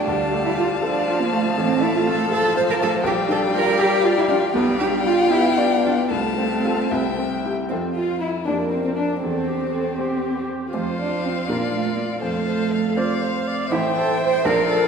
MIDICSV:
0, 0, Header, 1, 6, 480
1, 0, Start_track
1, 0, Key_signature, -1, "major"
1, 0, Tempo, 496278
1, 72, Time_signature, 6, 3, 24, 8
1, 3912, Tempo, 512383
1, 5352, Tempo, 530035
1, 7272, Tempo, 507614
1, 9192, Tempo, 497100
1, 14161, End_track
2, 0, Start_track
2, 0, Title_t, "Violin"
2, 0, Program_c, 0, 40
2, 77, Note_on_c, 0, 81, 52
2, 2909, Note_off_c, 0, 81, 0
2, 2952, Note_on_c, 0, 79, 64
2, 4362, Note_off_c, 0, 79, 0
2, 4382, Note_on_c, 0, 79, 66
2, 5793, Note_off_c, 0, 79, 0
2, 5832, Note_on_c, 0, 81, 51
2, 6557, Note_on_c, 0, 79, 49
2, 6570, Note_off_c, 0, 81, 0
2, 7084, Note_off_c, 0, 79, 0
2, 7271, Note_on_c, 0, 60, 40
2, 7346, Note_off_c, 0, 60, 0
2, 7521, Note_on_c, 0, 65, 47
2, 7749, Note_off_c, 0, 65, 0
2, 7755, Note_on_c, 0, 64, 44
2, 7990, Note_off_c, 0, 64, 0
2, 7999, Note_on_c, 0, 62, 44
2, 8075, Note_off_c, 0, 62, 0
2, 8235, Note_on_c, 0, 60, 39
2, 8351, Note_off_c, 0, 60, 0
2, 8359, Note_on_c, 0, 60, 39
2, 8405, Note_off_c, 0, 60, 0
2, 8483, Note_on_c, 0, 62, 38
2, 8706, Note_off_c, 0, 62, 0
2, 8712, Note_on_c, 0, 60, 44
2, 9893, Note_off_c, 0, 60, 0
2, 10161, Note_on_c, 0, 77, 40
2, 11563, Note_off_c, 0, 77, 0
2, 11605, Note_on_c, 0, 77, 43
2, 12308, Note_off_c, 0, 77, 0
2, 12324, Note_on_c, 0, 77, 44
2, 13034, Note_on_c, 0, 79, 50
2, 13049, Note_off_c, 0, 77, 0
2, 13754, Note_on_c, 0, 77, 54
2, 13768, Note_off_c, 0, 79, 0
2, 14161, Note_off_c, 0, 77, 0
2, 14161, End_track
3, 0, Start_track
3, 0, Title_t, "Violin"
3, 0, Program_c, 1, 40
3, 68, Note_on_c, 1, 77, 59
3, 2905, Note_off_c, 1, 77, 0
3, 2948, Note_on_c, 1, 77, 68
3, 4360, Note_off_c, 1, 77, 0
3, 4373, Note_on_c, 1, 77, 69
3, 5789, Note_off_c, 1, 77, 0
3, 5825, Note_on_c, 1, 77, 53
3, 6542, Note_on_c, 1, 76, 49
3, 6556, Note_off_c, 1, 77, 0
3, 7077, Note_off_c, 1, 76, 0
3, 7261, Note_on_c, 1, 60, 44
3, 7490, Note_off_c, 1, 60, 0
3, 7500, Note_on_c, 1, 65, 47
3, 7743, Note_off_c, 1, 65, 0
3, 7747, Note_on_c, 1, 64, 39
3, 7823, Note_off_c, 1, 64, 0
3, 7979, Note_on_c, 1, 62, 41
3, 8054, Note_off_c, 1, 62, 0
3, 8224, Note_on_c, 1, 60, 38
3, 8274, Note_off_c, 1, 60, 0
3, 8337, Note_on_c, 1, 60, 42
3, 8456, Note_off_c, 1, 60, 0
3, 8461, Note_on_c, 1, 62, 38
3, 8537, Note_off_c, 1, 62, 0
3, 8705, Note_on_c, 1, 60, 47
3, 9889, Note_off_c, 1, 60, 0
3, 10158, Note_on_c, 1, 72, 39
3, 10881, Note_on_c, 1, 74, 41
3, 10895, Note_off_c, 1, 72, 0
3, 11588, Note_off_c, 1, 74, 0
3, 11594, Note_on_c, 1, 72, 45
3, 11824, Note_off_c, 1, 72, 0
3, 11829, Note_on_c, 1, 72, 48
3, 12070, Note_on_c, 1, 77, 45
3, 12084, Note_off_c, 1, 72, 0
3, 13024, Note_off_c, 1, 77, 0
3, 13029, Note_on_c, 1, 76, 50
3, 13747, Note_on_c, 1, 74, 50
3, 13762, Note_off_c, 1, 76, 0
3, 14161, Note_off_c, 1, 74, 0
3, 14161, End_track
4, 0, Start_track
4, 0, Title_t, "Viola"
4, 0, Program_c, 2, 41
4, 66, Note_on_c, 2, 55, 63
4, 783, Note_off_c, 2, 55, 0
4, 799, Note_on_c, 2, 53, 63
4, 1520, Note_on_c, 2, 57, 71
4, 1534, Note_off_c, 2, 53, 0
4, 2229, Note_off_c, 2, 57, 0
4, 2235, Note_on_c, 2, 53, 66
4, 2953, Note_on_c, 2, 55, 80
4, 2968, Note_off_c, 2, 53, 0
4, 4382, Note_off_c, 2, 55, 0
4, 4388, Note_on_c, 2, 55, 65
4, 5094, Note_off_c, 2, 55, 0
4, 5110, Note_on_c, 2, 59, 66
4, 5828, Note_on_c, 2, 57, 61
4, 5842, Note_off_c, 2, 59, 0
4, 6912, Note_off_c, 2, 57, 0
4, 7991, Note_on_c, 2, 70, 44
4, 8672, Note_off_c, 2, 70, 0
4, 8706, Note_on_c, 2, 69, 41
4, 8950, Note_on_c, 2, 67, 36
4, 8964, Note_off_c, 2, 69, 0
4, 9185, Note_off_c, 2, 67, 0
4, 9191, Note_on_c, 2, 69, 37
4, 9425, Note_off_c, 2, 69, 0
4, 9431, Note_on_c, 2, 67, 43
4, 10143, Note_off_c, 2, 67, 0
4, 10156, Note_on_c, 2, 65, 52
4, 11570, Note_off_c, 2, 65, 0
4, 11597, Note_on_c, 2, 69, 56
4, 12318, Note_on_c, 2, 74, 56
4, 12332, Note_off_c, 2, 69, 0
4, 12552, Note_on_c, 2, 72, 49
4, 12567, Note_off_c, 2, 74, 0
4, 12798, Note_on_c, 2, 74, 58
4, 12813, Note_off_c, 2, 72, 0
4, 13030, Note_off_c, 2, 74, 0
4, 13036, Note_on_c, 2, 72, 62
4, 13754, Note_on_c, 2, 70, 67
4, 13769, Note_off_c, 2, 72, 0
4, 14161, Note_off_c, 2, 70, 0
4, 14161, End_track
5, 0, Start_track
5, 0, Title_t, "Cello"
5, 0, Program_c, 3, 42
5, 0, Note_on_c, 3, 62, 75
5, 428, Note_off_c, 3, 62, 0
5, 439, Note_on_c, 3, 64, 66
5, 545, Note_off_c, 3, 64, 0
5, 551, Note_on_c, 3, 65, 72
5, 628, Note_off_c, 3, 65, 0
5, 807, Note_on_c, 3, 62, 73
5, 1165, Note_on_c, 3, 58, 64
5, 1180, Note_off_c, 3, 62, 0
5, 1284, Note_on_c, 3, 57, 62
5, 1298, Note_off_c, 3, 58, 0
5, 1512, Note_off_c, 3, 57, 0
5, 1517, Note_on_c, 3, 60, 76
5, 1756, Note_on_c, 3, 64, 75
5, 1770, Note_off_c, 3, 60, 0
5, 1881, Note_on_c, 3, 65, 66
5, 1896, Note_off_c, 3, 64, 0
5, 2001, Note_on_c, 3, 69, 81
5, 2015, Note_off_c, 3, 65, 0
5, 2235, Note_off_c, 3, 69, 0
5, 2243, Note_on_c, 3, 69, 86
5, 2470, Note_off_c, 3, 69, 0
5, 2482, Note_on_c, 3, 72, 86
5, 2527, Note_off_c, 3, 72, 0
5, 2616, Note_on_c, 3, 70, 78
5, 2658, Note_off_c, 3, 70, 0
5, 2731, Note_on_c, 3, 69, 81
5, 2809, Note_off_c, 3, 69, 0
5, 2966, Note_on_c, 3, 67, 80
5, 3043, Note_off_c, 3, 67, 0
5, 3200, Note_on_c, 3, 69, 79
5, 3277, Note_off_c, 3, 69, 0
5, 3436, Note_on_c, 3, 70, 86
5, 3680, Note_on_c, 3, 67, 84
5, 3694, Note_off_c, 3, 70, 0
5, 3907, Note_on_c, 3, 65, 79
5, 3921, Note_off_c, 3, 67, 0
5, 4027, Note_off_c, 3, 65, 0
5, 4034, Note_on_c, 3, 64, 78
5, 4081, Note_off_c, 3, 64, 0
5, 4136, Note_on_c, 3, 62, 75
5, 4211, Note_off_c, 3, 62, 0
5, 4371, Note_on_c, 3, 59, 82
5, 4603, Note_off_c, 3, 59, 0
5, 4608, Note_on_c, 3, 67, 77
5, 4683, Note_off_c, 3, 67, 0
5, 4857, Note_on_c, 3, 65, 79
5, 5091, Note_on_c, 3, 64, 75
5, 5105, Note_off_c, 3, 65, 0
5, 5347, Note_on_c, 3, 62, 70
5, 5361, Note_off_c, 3, 64, 0
5, 5579, Note_off_c, 3, 62, 0
5, 5584, Note_on_c, 3, 62, 65
5, 5657, Note_off_c, 3, 62, 0
5, 5831, Note_on_c, 3, 60, 74
5, 7009, Note_off_c, 3, 60, 0
5, 7263, Note_on_c, 3, 60, 47
5, 7338, Note_off_c, 3, 60, 0
5, 7503, Note_on_c, 3, 65, 52
5, 7744, Note_off_c, 3, 65, 0
5, 7756, Note_on_c, 3, 64, 50
5, 7832, Note_off_c, 3, 64, 0
5, 7978, Note_on_c, 3, 62, 49
5, 8221, Note_off_c, 3, 62, 0
5, 8228, Note_on_c, 3, 60, 47
5, 8343, Note_off_c, 3, 60, 0
5, 8349, Note_on_c, 3, 60, 42
5, 8398, Note_off_c, 3, 60, 0
5, 8457, Note_on_c, 3, 62, 41
5, 8699, Note_off_c, 3, 62, 0
5, 8708, Note_on_c, 3, 60, 50
5, 9891, Note_off_c, 3, 60, 0
5, 10159, Note_on_c, 3, 57, 49
5, 10236, Note_off_c, 3, 57, 0
5, 10412, Note_on_c, 3, 62, 57
5, 10653, Note_on_c, 3, 60, 49
5, 10667, Note_off_c, 3, 62, 0
5, 10895, Note_on_c, 3, 58, 57
5, 10909, Note_off_c, 3, 60, 0
5, 11111, Note_off_c, 3, 58, 0
5, 11117, Note_on_c, 3, 57, 53
5, 11229, Note_off_c, 3, 57, 0
5, 11235, Note_on_c, 3, 57, 51
5, 11284, Note_off_c, 3, 57, 0
5, 11341, Note_on_c, 3, 58, 46
5, 11418, Note_off_c, 3, 58, 0
5, 11582, Note_on_c, 3, 57, 62
5, 12765, Note_off_c, 3, 57, 0
5, 13033, Note_on_c, 3, 64, 67
5, 13110, Note_off_c, 3, 64, 0
5, 13280, Note_on_c, 3, 69, 68
5, 13513, Note_off_c, 3, 69, 0
5, 13517, Note_on_c, 3, 72, 75
5, 13748, Note_on_c, 3, 70, 75
5, 13763, Note_off_c, 3, 72, 0
5, 13968, Note_off_c, 3, 70, 0
5, 13974, Note_on_c, 3, 69, 75
5, 14161, Note_off_c, 3, 69, 0
5, 14161, End_track
6, 0, Start_track
6, 0, Title_t, "Grand piano"
6, 0, Program_c, 4, 0
6, 0, Control_c, 4, 64, 127
6, 0, Note_on_c, 4, 73, 44
6, 70, Note_on_c, 4, 38, 52
6, 88, Control_c, 4, 64, 0
6, 99, Note_off_c, 4, 73, 0
6, 228, Control_c, 4, 64, 127
6, 312, Note_on_c, 4, 57, 46
6, 558, Note_on_c, 4, 65, 43
6, 702, Note_off_c, 4, 57, 0
6, 791, Note_on_c, 4, 69, 52
6, 946, Note_off_c, 4, 65, 0
6, 1040, Note_on_c, 4, 65, 51
6, 1180, Note_off_c, 4, 69, 0
6, 1278, Note_on_c, 4, 57, 47
6, 1421, Note_off_c, 4, 65, 0
6, 1476, Note_off_c, 4, 38, 0
6, 1515, Note_off_c, 4, 57, 0
6, 1522, Note_on_c, 4, 33, 61
6, 1536, Control_c, 4, 64, 0
6, 1683, Control_c, 4, 64, 127
6, 1766, Note_on_c, 4, 57, 47
6, 2001, Note_on_c, 4, 65, 48
6, 2141, Note_off_c, 4, 57, 0
6, 2231, Note_on_c, 4, 69, 54
6, 2378, Note_off_c, 4, 65, 0
6, 2462, Note_on_c, 4, 65, 52
6, 2611, Note_off_c, 4, 69, 0
6, 2711, Note_on_c, 4, 57, 50
6, 2846, Note_off_c, 4, 65, 0
6, 2910, Note_off_c, 4, 33, 0
6, 2937, Note_on_c, 4, 34, 60
6, 2947, Note_off_c, 4, 57, 0
6, 2962, Control_c, 4, 64, 0
6, 3106, Control_c, 4, 64, 127
6, 3177, Note_on_c, 4, 62, 50
6, 3421, Note_on_c, 4, 65, 50
6, 3567, Note_off_c, 4, 62, 0
6, 3662, Note_on_c, 4, 67, 56
6, 3811, Note_off_c, 4, 65, 0
6, 3912, Note_on_c, 4, 74, 58
6, 4050, Note_off_c, 4, 67, 0
6, 4154, Note_on_c, 4, 65, 52
6, 4292, Note_off_c, 4, 74, 0
6, 4346, Note_off_c, 4, 34, 0
6, 4388, Note_on_c, 4, 35, 61
6, 4390, Note_off_c, 4, 65, 0
6, 4404, Control_c, 4, 64, 0
6, 4544, Control_c, 4, 64, 127
6, 4623, Note_on_c, 4, 62, 46
6, 4861, Note_on_c, 4, 65, 47
6, 5010, Note_off_c, 4, 62, 0
6, 5103, Note_on_c, 4, 67, 51
6, 5249, Note_off_c, 4, 65, 0
6, 5350, Note_on_c, 4, 74, 51
6, 5490, Note_off_c, 4, 67, 0
6, 5591, Note_on_c, 4, 65, 45
6, 5734, Note_off_c, 4, 74, 0
6, 5796, Note_off_c, 4, 35, 0
6, 5828, Note_on_c, 4, 36, 50
6, 5833, Note_off_c, 4, 65, 0
6, 5850, Control_c, 4, 64, 0
6, 5988, Control_c, 4, 64, 127
6, 6072, Note_on_c, 4, 60, 41
6, 6319, Note_on_c, 4, 65, 38
6, 6322, Note_on_c, 4, 69, 41
6, 6459, Note_off_c, 4, 60, 0
6, 6532, Note_off_c, 4, 36, 0
6, 6533, Note_off_c, 4, 65, 0
6, 6534, Note_off_c, 4, 69, 0
6, 6556, Note_on_c, 4, 36, 56
6, 6572, Control_c, 4, 64, 0
6, 6712, Control_c, 4, 64, 127
6, 6800, Note_on_c, 4, 60, 39
6, 7042, Note_on_c, 4, 64, 39
6, 7047, Note_on_c, 4, 67, 42
6, 7180, Note_off_c, 4, 60, 0
6, 7249, Note_off_c, 4, 36, 0
6, 7251, Note_off_c, 4, 64, 0
6, 7254, Note_off_c, 4, 67, 0
6, 7283, Note_on_c, 4, 41, 38
6, 7283, Note_on_c, 4, 60, 26
6, 7287, Control_c, 4, 64, 0
6, 7288, Note_on_c, 4, 65, 27
6, 7290, Note_on_c, 4, 69, 28
6, 7471, Control_c, 4, 64, 127
6, 7963, Note_off_c, 4, 60, 0
6, 7965, Note_off_c, 4, 65, 0
6, 7966, Note_off_c, 4, 69, 0
6, 7979, Note_off_c, 4, 41, 0
6, 7999, Note_on_c, 4, 58, 31
6, 8001, Note_on_c, 4, 41, 41
6, 8004, Note_on_c, 4, 62, 29
6, 8011, Note_on_c, 4, 67, 30
6, 8014, Control_c, 4, 64, 0
6, 8186, Control_c, 4, 64, 127
6, 8676, Note_off_c, 4, 58, 0
6, 8679, Note_off_c, 4, 62, 0
6, 8682, Note_off_c, 4, 67, 0
6, 8693, Note_off_c, 4, 41, 0
6, 8720, Note_on_c, 4, 40, 40
6, 8730, Control_c, 4, 64, 0
6, 8883, Control_c, 4, 64, 127
6, 9416, Note_off_c, 4, 40, 0
6, 9436, Note_on_c, 4, 60, 34
6, 9444, Note_on_c, 4, 67, 32
6, 9447, Note_on_c, 4, 72, 35
6, 10121, Note_off_c, 4, 60, 0
6, 10125, Note_off_c, 4, 67, 0
6, 10127, Note_off_c, 4, 72, 0
6, 10159, Note_on_c, 4, 60, 29
6, 10162, Note_on_c, 4, 41, 41
6, 10164, Note_on_c, 4, 65, 29
6, 10172, Note_on_c, 4, 72, 32
6, 10176, Control_c, 4, 64, 0
6, 10350, Control_c, 4, 64, 127
6, 10848, Note_off_c, 4, 60, 0
6, 10851, Note_off_c, 4, 65, 0
6, 10855, Note_off_c, 4, 72, 0
6, 10866, Note_off_c, 4, 41, 0
6, 10885, Note_on_c, 4, 62, 31
6, 10886, Note_on_c, 4, 46, 47
6, 10892, Note_on_c, 4, 65, 34
6, 10894, Note_on_c, 4, 70, 34
6, 10904, Control_c, 4, 64, 0
6, 11067, Control_c, 4, 64, 127
6, 11561, Note_off_c, 4, 62, 0
6, 11565, Note_off_c, 4, 65, 0
6, 11566, Note_off_c, 4, 70, 0
6, 11579, Note_off_c, 4, 46, 0
6, 11592, Note_on_c, 4, 41, 45
6, 11618, Control_c, 4, 64, 0
6, 11766, Control_c, 4, 64, 127
6, 12294, Note_off_c, 4, 41, 0
6, 12317, Note_on_c, 4, 60, 38
6, 12317, Note_on_c, 4, 65, 37
6, 12322, Note_on_c, 4, 72, 43
6, 12998, Note_off_c, 4, 60, 0
6, 12998, Note_off_c, 4, 65, 0
6, 13001, Note_off_c, 4, 72, 0
6, 13035, Note_on_c, 4, 33, 53
6, 13035, Note_on_c, 4, 57, 38
6, 13042, Note_on_c, 4, 64, 37
6, 13047, Note_on_c, 4, 72, 40
6, 13057, Control_c, 4, 64, 0
6, 13227, Control_c, 4, 64, 127
6, 13713, Note_off_c, 4, 57, 0
6, 13717, Note_off_c, 4, 64, 0
6, 13719, Note_off_c, 4, 72, 0
6, 13730, Note_off_c, 4, 33, 0
6, 13748, Note_on_c, 4, 34, 60
6, 13748, Note_on_c, 4, 53, 42
6, 13751, Note_on_c, 4, 62, 43
6, 13756, Note_on_c, 4, 70, 40
6, 13773, Control_c, 4, 64, 0
6, 13906, Control_c, 4, 64, 127
6, 14161, Note_off_c, 4, 34, 0
6, 14161, Note_off_c, 4, 53, 0
6, 14161, Note_off_c, 4, 62, 0
6, 14161, Note_off_c, 4, 70, 0
6, 14161, End_track
0, 0, End_of_file